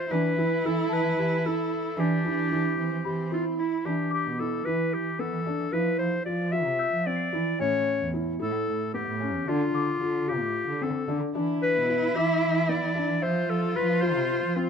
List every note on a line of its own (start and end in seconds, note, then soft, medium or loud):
0.00 0.13 C5 medium
0.09 0.21 E3 loud
0.09 0.30 D4 medium
0.09 1.99 E4 medium
0.09 0.67 B4 medium
0.36 0.47 E3 medium
0.36 0.57 E4 medium
0.63 0.85 E3 medium
0.63 1.03 E4 medium
0.63 0.94 A4 medium
0.89 1.01 E3 medium
0.89 1.47 B4 medium
0.89 2.20 A5 medium
1.02 1.14 E3 medium
1.16 1.38 E3 medium
1.16 1.37 G4 medium
1.45 1.83 E4 medium
1.45 2.01 A4 medium
1.97 2.08 E3 loud
1.97 2.78 D4 medium
1.97 2.18 D4 medium
1.97 3.32 G4 medium
2.24 2.35 E3 medium
2.24 2.44 E4 medium
2.51 2.72 E3 medium
2.51 2.90 E4 medium
2.79 2.89 E3 medium
2.79 3.60 C4 medium
2.92 3.02 E3 medium
3.05 3.26 E3 medium
3.05 3.24 G4 medium
3.05 4.08 B5 soft
3.32 3.70 E4 medium
3.32 3.45 F4 medium
3.59 3.85 E4 medium
3.59 3.87 E4 medium
3.84 4.06 E3 medium
3.84 4.24 D4 medium
3.84 4.12 G4 medium
4.11 4.41 G4 medium
4.11 5.95 D6 medium
4.26 4.58 B2 medium
4.39 4.58 E4 medium
4.39 4.67 A4 medium
4.65 4.76 E3 medium
4.65 5.04 E4 medium
4.65 4.95 B4 medium
4.92 5.24 E3 medium
4.92 5.21 G4 medium
5.19 5.38 B3 medium
5.19 5.74 A4 medium
5.32 5.43 E3 medium
5.46 5.65 D4 medium
5.59 5.70 E3 medium
5.72 5.94 F3 medium
5.72 6.11 E4 medium
5.72 5.98 B4 medium
5.99 6.21 F3 medium
5.99 6.24 C5 medium
6.25 6.68 F3 medium
6.25 6.45 F4 medium
6.25 6.53 D5 medium
6.52 6.91 F4 medium
6.52 7.08 E5 medium
6.66 6.88 C3 medium
6.79 7.83 E6 medium
6.79 7.83 G6 soft
6.92 7.14 F3 medium
6.99 8.00 B6 soft
7.06 7.26 C4 medium
7.06 7.60 D5 medium
7.16 8.14 C7 soft
7.33 7.44 E3 medium
7.33 7.52 E4 medium
7.59 7.82 A2 medium
7.59 7.98 C#4 medium
7.59 8.10 C#5 medium
8.01 8.33 E2 medium
8.13 8.33 E4 medium
8.39 8.52 A2 medium
8.39 8.78 E4 medium
8.39 8.91 A4 medium
8.68 9.00 A2 medium
8.94 9.13 B3 medium
8.94 9.50 G4 medium
9.08 9.35 A2 medium
9.20 9.40 C#4 medium
9.33 9.45 E2 medium
9.46 9.68 D3 medium
9.46 9.86 D4 medium
9.46 10.31 F4 medium
9.74 9.96 D3 medium
9.74 11.58 D6 medium
10.00 10.42 D3 medium
10.00 10.21 F4 medium
10.28 10.66 F4 medium
10.28 10.84 G4 medium
10.41 10.62 A2 medium
10.68 10.89 D3 medium
10.81 11.01 C4 medium
10.81 11.23 A4 medium
11.08 11.19 D3 medium
11.08 11.27 D4 medium
11.35 11.57 E3 medium
11.35 11.73 D4 medium
11.35 13.23 E4 loud
11.62 12.17 B4 medium
11.75 12.07 B2 medium
11.89 12.08 E4 medium
12.15 12.26 E3 medium
12.15 12.54 E4 medium
12.15 12.71 E5 medium
12.15 13.46 D6 soft
12.42 12.75 E3 medium
12.69 12.88 B3 medium
12.69 13.24 D5 medium
12.81 12.93 E3 medium
12.95 13.15 D4 medium
13.09 13.20 E3 medium
13.22 13.44 F3 medium
13.22 14.70 F4 loud
13.22 13.51 C5 medium
13.22 13.60 E5 medium
13.49 13.70 F3 medium
13.49 13.78 A4 medium
13.76 14.18 F3 medium
13.76 13.95 F4 medium
13.76 14.03 B4 medium
13.76 14.70 B5 soft
14.01 14.41 F4 medium
14.01 14.58 C5 medium
14.16 14.38 C3 medium
14.44 14.65 F3 medium
14.56 14.70 C4 medium
14.56 14.70 F4 medium